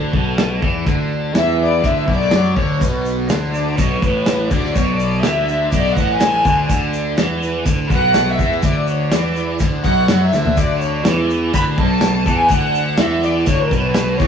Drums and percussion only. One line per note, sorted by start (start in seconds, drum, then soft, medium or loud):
0.13 kick loud
0.38 snare loud
0.38 closed hi-hat medium
0.62 kick loud
0.86 kick loud
0.86 closed hi-hat medium
1.35 snare loud
1.35 closed hi-hat medium
1.84 kick loud
1.84 closed hi-hat medium
2.08 kick medium
2.31 snare loud
2.31 closed hi-hat medium
2.57 kick loud
2.81 kick loud
2.81 closed hi-hat medium
2.81 shaker medium
3.05 shaker medium
3.29 snare loud
3.29 closed hi-hat medium
3.29 shaker medium
3.54 shaker medium
3.78 kick loud
3.78 closed hi-hat medium
3.78 shaker medium
4.02 kick medium
4.02 shaker medium
4.26 snare loud
4.26 closed hi-hat medium
4.26 shaker medium
4.51 kick loud
4.51 shaker medium
4.64 snare soft
4.76 kick loud
4.76 closed hi-hat medium
4.76 shaker medium
5.00 shaker medium
5.23 snare loud
5.23 closed hi-hat medium
5.23 shaker loud
5.48 shaker medium
5.72 kick loud
5.72 closed hi-hat medium
5.72 shaker loud
5.97 kick loud
5.97 shaker medium
6.20 snare loud
6.20 closed hi-hat medium
6.20 shaker medium
6.45 kick loud
6.45 shaker medium
6.69 kick loud
6.69 closed hi-hat medium
6.69 shaker loud
6.93 shaker medium
7.18 snare loud
7.18 closed hi-hat medium
7.18 shaker medium
7.42 shaker medium
7.66 kick loud
7.66 closed hi-hat medium
7.66 shaker medium
7.90 kick loud
7.90 shaker medium
8.14 snare loud
8.14 closed hi-hat medium
8.14 shaker medium
8.39 kick medium
8.39 shaker medium
8.51 snare soft
8.62 kick loud
8.62 closed hi-hat medium
8.62 shaker medium
8.87 shaker medium
9.12 snare loud
9.12 closed hi-hat medium
9.12 shaker medium
9.36 shaker medium
9.59 kick loud
9.59 closed hi-hat medium
9.59 shaker loud
9.84 kick loud
9.84 shaker medium
10.08 snare loud
10.08 closed hi-hat medium
10.08 shaker loud
10.33 snare medium
10.33 shaker medium
10.45 floor tom medium
10.57 kick loud
10.57 closed hi-hat medium
10.57 shaker loud
10.81 shaker medium
11.05 snare loud
11.05 closed hi-hat medium
11.05 shaker loud
11.30 shaker medium
11.53 kick loud
11.53 closed hi-hat medium
11.53 shaker medium
11.78 kick loud
12.01 snare loud
12.01 closed hi-hat medium
12.01 shaker medium
12.26 kick loud
12.26 shaker medium
12.49 kick loud
12.49 closed hi-hat medium
12.49 shaker medium
12.75 shaker medium
12.98 snare loud
12.98 closed hi-hat medium
12.98 shaker medium
13.23 shaker medium
13.46 kick loud
13.46 closed hi-hat medium
13.46 shaker medium
13.71 kick loud
13.71 shaker medium
13.94 snare loud
13.94 closed hi-hat medium
13.94 shaker medium
14.20 kick loud
14.20 shaker medium